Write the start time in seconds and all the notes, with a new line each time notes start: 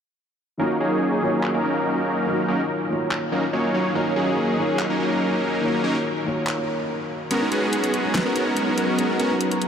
0.58 D#3 F#3 A#3 C#4 D#4 F4 F#4 A#4 C#5
0.80 F#3 A#3 C#4 D#4 G#4
1.20 D#3 A#3 F4 F#4
1.24 C#5
1.43 clap
1.54 F#3 A#3 C#4 D#4 A#4
1.64 F#3 A#3 C#4 D#4 A#4
2.25 D#3 A#3 F4 F#4 C#5
2.48 F#3 A#3 C#4 D#4 A#4
2.88 D#3 A#3 F4 F#4
2.92 C#5
3.11 clap
3.32 F#3 A#3 C#4 D#4 A#4
3.53 F#3 A#3 C#4 D#4 C#5
3.74 F#3 A#3 C#4 D#4 C#5
3.93 D#3 F#3 A#3 C#4 D#4 F4 F#4 A#4
3.97 C#5
4.16 F#3 A#3 C#4 D#4 G#4
4.56 D#3 A#3 F4 F#4
4.60 C#5
4.79 clap
4.90 F#3 A#3 C#4 D#4 A#4
5.00 F#3 A#3 C#4 D#4 A#4
5.61 D#3 A#3 F4 F#4
5.65 C#5
5.84 F#3 A#3 C#4 D#4 A#4
6.24 D#3 A#3 F4 F#4 C#5
6.47 clap
7.31 F#3 G#3 B3 C#4 F#4 G#4 A#4 A#5, closed hi-hat
7.42 D#4
7.52 G#3 B3 C#4 F#4 G#4 B4, closed hi-hat
7.63 F#4
7.73 D#4, closed hi-hat
7.84 A#4, closed hi-hat
7.94 C#4, closed hi-hat
8.05 D#4
8.15 B4, snare, clap, closed hi-hat
8.26 G#3 B3 C#4 F#4 A#4
8.36 G#3 B3 C#4 D#4 F#4 A#4, closed hi-hat
8.47 A#4
8.57 C#4, closed hi-hat
8.68 D#4
8.78 B4, closed hi-hat
8.89 F#4
8.99 D#4, closed hi-hat
9.09 A#4
9.20 G#3 B3 C#4 F#4 A#4, closed hi-hat
9.31 D#4
9.41 B4, closed hi-hat
9.52 F#4, closed hi-hat
9.62 D#4, closed hi-hat